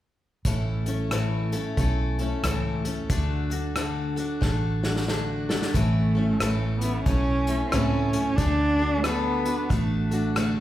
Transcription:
0.45 A1 A2 E3 A3 C#4 E4 A4, kick, closed hi-hat
0.86 A3 C#4 E4 A4, closed hi-hat
1.11 A2 E3 A3 C#4 E4 A4, cross-stick, closed hi-hat
1.52 A3 C#4 E4 A4, closed hi-hat
1.77 B1 A3 C#4 E4 A4, kick, closed hi-hat
2.19 A3 C#4 E4 A4, closed hi-hat
2.43 C#2 A2 E3 A3 C#4 E4 A4, cross-stick, closed hi-hat
2.85 A3 C#4 E4 A4, closed hi-hat
3.10 D2 D3 A3 D4 F#4 A4, kick, closed hi-hat
3.50 D4 F#4 A4, closed hi-hat
3.76 D3 A3 D4 F#4 A4, cross-stick, closed hi-hat
4.16 D4 F#4 A4, closed hi-hat
4.41 A1 A3 D4 F#4 A4, kick, snare
4.83 D4 F#4 A4, snare
4.96 snare
5.08 D3 A3 D4 F#4 A4, snare
5.49 D4 F#4 A4, snare
5.62 snare
5.74 A1 A2 E3 A3 C#4 E4 A4, kick, closed hi-hat
6.15 A3 C#4 E4 A4
6.40 A1 A2 E3 A3 C#4 E4 A4, cross-stick, closed hi-hat
6.79 B3 C#4 E4 A4, closed hi-hat
6.84 A3
7.05 B1 A3 C#4, kick, closed hi-hat
7.09 E4 A4
7.47 A3 C#4 E4 A4, closed hi-hat
7.67 C4 C#4
7.72 C#2 A2 E3 A3 C#4 E4 A4, cross-stick, closed hi-hat
8.13 C#4 E4 A4, closed hi-hat
8.17 A3
8.36 D2 D3 A3 D4, kick, closed hi-hat
8.40 D4 F#4 A4
8.79 D4 F#4 A4
8.98 A3
9.03 D3 A3 B3 D4 F#4 A4, cross-stick, closed hi-hat
9.45 D4 F#4 A4, closed hi-hat
9.69 A1 A3 D4 F#4 A4, kick, closed hi-hat
10.11 D4 F#4 A4, closed hi-hat
10.36 D3 A3 D4 F#4 A4, cross-stick, closed hi-hat

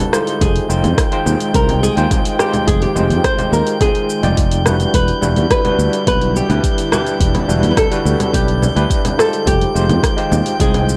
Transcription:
Already playing: D3 G3 E4 A4 G6
0.00 shaker
0.12 G#3 D#4 F4 G4 C5, cross-stick, shaker
0.27 open hi-hat, shaker
0.41 F1 D#3 G#3 G#4 G5, kick, open hi-hat, low conga, shaker
0.56 open hi-hat
0.69 F1 G#3 D#4 F4 C5 G5, shaker
0.84 F2, open hi-hat, low conga, shaker
0.98 kick, cross-stick, open hi-hat, shaker
1.11 G#3 D#4 F4 C5 G5, open hi-hat
1.26 D#2, low conga, shaker
1.40 open hi-hat, shaker
1.53 C2 G#3 D#4 F4 G4 A#4 C5, kick, open hi-hat, shaker
1.69 open hi-hat, low conga
1.83 G#4, shaker
1.96 D#2 G#3 D#4 F4 C5 G5, open hi-hat, shaker
2.11 kick, open hi-hat, low conga, shaker
2.25 open hi-hat, shaker
2.39 G#3 D#4 F4 G4 C5, cross-stick, shaker
2.54 open hi-hat, low conga, shaker
2.67 F1 G#4, kick, open hi-hat, shaker
2.82 G4, open hi-hat
2.95 F1 G#3 D#4 F4 G4 C5, low conga, shaker
3.10 F2, open hi-hat, shaker
3.24 C5, kick, cross-stick, open hi-hat, shaker
3.37 G#3 D#4 F4 G4 C5, open hi-hat, low conga, shaker
3.52 D#2 A#4, shaker
3.67 open hi-hat, shaker
3.80 G#3 D#4 F4 G#4 C5 G5, kick, open hi-hat, low conga, shaker
3.95 open hi-hat
4.10 shaker
4.23 F1 G#3 D#4 F4 D5 G5, open hi-hat, low conga, shaker
4.37 kick, open hi-hat, shaker
4.51 open hi-hat, shaker
4.65 G3 D4 E4 F#4 B4, cross-stick, low conga, shaker
4.80 open hi-hat, shaker
4.93 E1 D3 G3 E4 B4, kick, open hi-hat, shaker
5.08 open hi-hat
5.21 E1 G3 D4 E4 F#4 B4, low conga, shaker
5.36 E2, open hi-hat, shaker
5.50 B4, kick, cross-stick, open hi-hat, shaker
5.64 G3 D4 E4 F#4 B4, open hi-hat, low conga
5.79 D2, shaker
5.93 open hi-hat, shaker
6.06 B1 G3 D4 E4 F#4 B4, kick, open hi-hat, low conga, shaker
6.21 open hi-hat
6.36 G4, shaker
6.49 D2 G3 D4 E4 G4 B4, open hi-hat, low conga, shaker
6.64 kick, open hi-hat, shaker
6.78 open hi-hat, shaker
6.92 G3 D4 E4 G4 B4, cross-stick, low conga, shaker
7.07 open hi-hat, shaker
7.20 E1, kick, open hi-hat, shaker
7.35 open hi-hat, low conga
7.48 E1 G3 D4 E4 F#4 B4, shaker
7.63 E2, open hi-hat, shaker
7.71 B4
7.77 A4, kick, cross-stick, open hi-hat, low conga, shaker
7.90 G3 D4 E4 F#4 B4, open hi-hat, shaker
8.05 D2, shaker
8.20 open hi-hat, low conga, shaker
8.33 B1 G3 D4 E4 G4 B4, kick, open hi-hat, shaker
8.48 open hi-hat
8.62 low conga, shaker
8.75 D2 G3 D4 E4 G4 B4, open hi-hat, shaker
8.90 kick, open hi-hat, shaker
9.05 open hi-hat, low conga, shaker
9.18 G#3 D#4 F4 G4 A4 C5, cross-stick, shaker
9.33 open hi-hat, shaker
9.47 F1 D#3 G#3 G4 G5, kick, open hi-hat, low conga, shaker
9.61 open hi-hat
9.74 F1 G#3 D#4 F4 G4 C5, shaker
9.89 F2, open hi-hat, low conga, shaker
10.03 kick, cross-stick, open hi-hat, shaker
10.17 G#3 D#4 F4 G4 C5, open hi-hat
10.32 D#2, low conga, shaker
10.46 open hi-hat, shaker
10.59 C2 G#3 D#4 F4 G#4 C5 G5, kick, open hi-hat, shaker
10.74 open hi-hat, low conga
10.89 shaker

